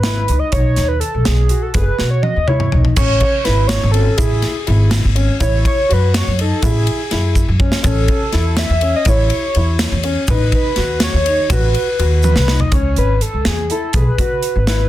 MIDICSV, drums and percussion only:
0, 0, Header, 1, 2, 480
1, 0, Start_track
1, 0, Tempo, 487805
1, 521, Time_signature, 5, 3, 24, 8
1, 14650, End_track
2, 0, Start_track
2, 0, Title_t, "Drums"
2, 34, Note_on_c, 9, 38, 96
2, 34, Note_on_c, 9, 42, 70
2, 133, Note_off_c, 9, 38, 0
2, 133, Note_off_c, 9, 42, 0
2, 277, Note_on_c, 9, 42, 50
2, 375, Note_off_c, 9, 42, 0
2, 512, Note_on_c, 9, 42, 71
2, 517, Note_on_c, 9, 36, 93
2, 610, Note_off_c, 9, 42, 0
2, 615, Note_off_c, 9, 36, 0
2, 752, Note_on_c, 9, 38, 30
2, 752, Note_on_c, 9, 42, 50
2, 851, Note_off_c, 9, 38, 0
2, 851, Note_off_c, 9, 42, 0
2, 995, Note_on_c, 9, 42, 50
2, 1093, Note_off_c, 9, 42, 0
2, 1233, Note_on_c, 9, 38, 87
2, 1233, Note_on_c, 9, 42, 72
2, 1332, Note_off_c, 9, 38, 0
2, 1332, Note_off_c, 9, 42, 0
2, 1469, Note_on_c, 9, 42, 55
2, 1567, Note_off_c, 9, 42, 0
2, 1711, Note_on_c, 9, 42, 80
2, 1717, Note_on_c, 9, 36, 101
2, 1809, Note_off_c, 9, 42, 0
2, 1815, Note_off_c, 9, 36, 0
2, 1954, Note_on_c, 9, 38, 43
2, 2052, Note_off_c, 9, 38, 0
2, 2195, Note_on_c, 9, 48, 52
2, 2293, Note_off_c, 9, 48, 0
2, 2437, Note_on_c, 9, 47, 68
2, 2535, Note_off_c, 9, 47, 0
2, 2558, Note_on_c, 9, 45, 57
2, 2656, Note_off_c, 9, 45, 0
2, 2679, Note_on_c, 9, 43, 66
2, 2777, Note_off_c, 9, 43, 0
2, 2801, Note_on_c, 9, 43, 61
2, 2899, Note_off_c, 9, 43, 0
2, 2915, Note_on_c, 9, 49, 104
2, 2920, Note_on_c, 9, 36, 117
2, 2921, Note_on_c, 9, 82, 67
2, 3014, Note_off_c, 9, 49, 0
2, 3019, Note_off_c, 9, 36, 0
2, 3019, Note_off_c, 9, 82, 0
2, 3152, Note_on_c, 9, 51, 57
2, 3158, Note_on_c, 9, 36, 67
2, 3251, Note_off_c, 9, 51, 0
2, 3257, Note_off_c, 9, 36, 0
2, 3394, Note_on_c, 9, 38, 33
2, 3394, Note_on_c, 9, 51, 59
2, 3493, Note_off_c, 9, 38, 0
2, 3493, Note_off_c, 9, 51, 0
2, 3631, Note_on_c, 9, 38, 109
2, 3631, Note_on_c, 9, 51, 77
2, 3647, Note_on_c, 9, 82, 52
2, 3730, Note_off_c, 9, 38, 0
2, 3730, Note_off_c, 9, 51, 0
2, 3746, Note_off_c, 9, 82, 0
2, 3875, Note_on_c, 9, 51, 63
2, 3974, Note_off_c, 9, 51, 0
2, 4111, Note_on_c, 9, 51, 84
2, 4117, Note_on_c, 9, 36, 112
2, 4129, Note_on_c, 9, 82, 60
2, 4209, Note_off_c, 9, 51, 0
2, 4215, Note_off_c, 9, 36, 0
2, 4227, Note_off_c, 9, 82, 0
2, 4352, Note_on_c, 9, 38, 30
2, 4352, Note_on_c, 9, 51, 58
2, 4450, Note_off_c, 9, 38, 0
2, 4450, Note_off_c, 9, 51, 0
2, 4596, Note_on_c, 9, 51, 51
2, 4694, Note_off_c, 9, 51, 0
2, 4831, Note_on_c, 9, 38, 109
2, 4831, Note_on_c, 9, 51, 86
2, 4854, Note_on_c, 9, 82, 45
2, 4929, Note_off_c, 9, 38, 0
2, 4929, Note_off_c, 9, 51, 0
2, 4952, Note_off_c, 9, 82, 0
2, 5076, Note_on_c, 9, 51, 61
2, 5175, Note_off_c, 9, 51, 0
2, 5317, Note_on_c, 9, 51, 86
2, 5319, Note_on_c, 9, 36, 115
2, 5330, Note_on_c, 9, 82, 54
2, 5415, Note_off_c, 9, 51, 0
2, 5418, Note_off_c, 9, 36, 0
2, 5428, Note_off_c, 9, 82, 0
2, 5561, Note_on_c, 9, 36, 72
2, 5563, Note_on_c, 9, 51, 64
2, 5659, Note_off_c, 9, 36, 0
2, 5662, Note_off_c, 9, 51, 0
2, 5810, Note_on_c, 9, 51, 58
2, 5909, Note_off_c, 9, 51, 0
2, 6046, Note_on_c, 9, 38, 100
2, 6046, Note_on_c, 9, 51, 89
2, 6048, Note_on_c, 9, 82, 47
2, 6144, Note_off_c, 9, 38, 0
2, 6144, Note_off_c, 9, 51, 0
2, 6147, Note_off_c, 9, 82, 0
2, 6286, Note_on_c, 9, 51, 62
2, 6384, Note_off_c, 9, 51, 0
2, 6519, Note_on_c, 9, 51, 92
2, 6521, Note_on_c, 9, 36, 108
2, 6528, Note_on_c, 9, 82, 63
2, 6617, Note_off_c, 9, 51, 0
2, 6619, Note_off_c, 9, 36, 0
2, 6626, Note_off_c, 9, 82, 0
2, 6758, Note_on_c, 9, 51, 66
2, 6856, Note_off_c, 9, 51, 0
2, 6997, Note_on_c, 9, 38, 33
2, 6997, Note_on_c, 9, 51, 61
2, 7095, Note_off_c, 9, 38, 0
2, 7095, Note_off_c, 9, 51, 0
2, 7236, Note_on_c, 9, 36, 59
2, 7239, Note_on_c, 9, 82, 43
2, 7335, Note_off_c, 9, 36, 0
2, 7337, Note_off_c, 9, 82, 0
2, 7476, Note_on_c, 9, 36, 92
2, 7574, Note_off_c, 9, 36, 0
2, 7594, Note_on_c, 9, 38, 86
2, 7692, Note_off_c, 9, 38, 0
2, 7713, Note_on_c, 9, 51, 93
2, 7716, Note_on_c, 9, 36, 112
2, 7716, Note_on_c, 9, 82, 55
2, 7812, Note_off_c, 9, 51, 0
2, 7815, Note_off_c, 9, 36, 0
2, 7815, Note_off_c, 9, 82, 0
2, 7952, Note_on_c, 9, 51, 58
2, 7956, Note_on_c, 9, 36, 76
2, 8051, Note_off_c, 9, 51, 0
2, 8054, Note_off_c, 9, 36, 0
2, 8191, Note_on_c, 9, 38, 32
2, 8191, Note_on_c, 9, 51, 56
2, 8290, Note_off_c, 9, 38, 0
2, 8290, Note_off_c, 9, 51, 0
2, 8429, Note_on_c, 9, 38, 107
2, 8429, Note_on_c, 9, 51, 88
2, 8438, Note_on_c, 9, 82, 45
2, 8528, Note_off_c, 9, 38, 0
2, 8528, Note_off_c, 9, 51, 0
2, 8537, Note_off_c, 9, 82, 0
2, 8670, Note_on_c, 9, 51, 62
2, 8768, Note_off_c, 9, 51, 0
2, 8906, Note_on_c, 9, 51, 90
2, 8913, Note_on_c, 9, 36, 124
2, 8926, Note_on_c, 9, 82, 54
2, 9004, Note_off_c, 9, 51, 0
2, 9012, Note_off_c, 9, 36, 0
2, 9024, Note_off_c, 9, 82, 0
2, 9150, Note_on_c, 9, 51, 61
2, 9248, Note_off_c, 9, 51, 0
2, 9394, Note_on_c, 9, 51, 57
2, 9492, Note_off_c, 9, 51, 0
2, 9633, Note_on_c, 9, 82, 46
2, 9635, Note_on_c, 9, 38, 105
2, 9635, Note_on_c, 9, 51, 82
2, 9732, Note_off_c, 9, 82, 0
2, 9733, Note_off_c, 9, 38, 0
2, 9733, Note_off_c, 9, 51, 0
2, 9873, Note_on_c, 9, 51, 63
2, 9971, Note_off_c, 9, 51, 0
2, 10108, Note_on_c, 9, 82, 51
2, 10116, Note_on_c, 9, 36, 123
2, 10117, Note_on_c, 9, 51, 99
2, 10207, Note_off_c, 9, 82, 0
2, 10214, Note_off_c, 9, 36, 0
2, 10216, Note_off_c, 9, 51, 0
2, 10353, Note_on_c, 9, 51, 62
2, 10354, Note_on_c, 9, 36, 69
2, 10451, Note_off_c, 9, 51, 0
2, 10453, Note_off_c, 9, 36, 0
2, 10587, Note_on_c, 9, 38, 35
2, 10587, Note_on_c, 9, 51, 65
2, 10685, Note_off_c, 9, 38, 0
2, 10685, Note_off_c, 9, 51, 0
2, 10825, Note_on_c, 9, 38, 115
2, 10825, Note_on_c, 9, 51, 92
2, 10833, Note_on_c, 9, 82, 42
2, 10923, Note_off_c, 9, 38, 0
2, 10923, Note_off_c, 9, 51, 0
2, 10931, Note_off_c, 9, 82, 0
2, 11077, Note_on_c, 9, 51, 65
2, 11175, Note_off_c, 9, 51, 0
2, 11315, Note_on_c, 9, 36, 120
2, 11315, Note_on_c, 9, 51, 96
2, 11320, Note_on_c, 9, 82, 55
2, 11413, Note_off_c, 9, 36, 0
2, 11414, Note_off_c, 9, 51, 0
2, 11419, Note_off_c, 9, 82, 0
2, 11557, Note_on_c, 9, 51, 62
2, 11655, Note_off_c, 9, 51, 0
2, 11796, Note_on_c, 9, 82, 18
2, 11803, Note_on_c, 9, 51, 63
2, 11894, Note_off_c, 9, 82, 0
2, 11901, Note_off_c, 9, 51, 0
2, 12031, Note_on_c, 9, 82, 45
2, 12045, Note_on_c, 9, 48, 60
2, 12129, Note_off_c, 9, 82, 0
2, 12143, Note_off_c, 9, 48, 0
2, 12159, Note_on_c, 9, 38, 69
2, 12257, Note_off_c, 9, 38, 0
2, 12281, Note_on_c, 9, 38, 87
2, 12380, Note_off_c, 9, 38, 0
2, 12396, Note_on_c, 9, 43, 79
2, 12494, Note_off_c, 9, 43, 0
2, 12513, Note_on_c, 9, 42, 73
2, 12516, Note_on_c, 9, 36, 105
2, 12612, Note_off_c, 9, 42, 0
2, 12614, Note_off_c, 9, 36, 0
2, 12757, Note_on_c, 9, 42, 56
2, 12855, Note_off_c, 9, 42, 0
2, 13000, Note_on_c, 9, 42, 53
2, 13098, Note_off_c, 9, 42, 0
2, 13236, Note_on_c, 9, 38, 100
2, 13236, Note_on_c, 9, 42, 70
2, 13334, Note_off_c, 9, 38, 0
2, 13334, Note_off_c, 9, 42, 0
2, 13479, Note_on_c, 9, 42, 55
2, 13578, Note_off_c, 9, 42, 0
2, 13708, Note_on_c, 9, 42, 79
2, 13716, Note_on_c, 9, 36, 110
2, 13807, Note_off_c, 9, 42, 0
2, 13815, Note_off_c, 9, 36, 0
2, 13958, Note_on_c, 9, 36, 62
2, 13958, Note_on_c, 9, 42, 62
2, 14056, Note_off_c, 9, 36, 0
2, 14056, Note_off_c, 9, 42, 0
2, 14194, Note_on_c, 9, 42, 52
2, 14293, Note_off_c, 9, 42, 0
2, 14438, Note_on_c, 9, 38, 87
2, 14438, Note_on_c, 9, 42, 80
2, 14536, Note_off_c, 9, 38, 0
2, 14536, Note_off_c, 9, 42, 0
2, 14650, End_track
0, 0, End_of_file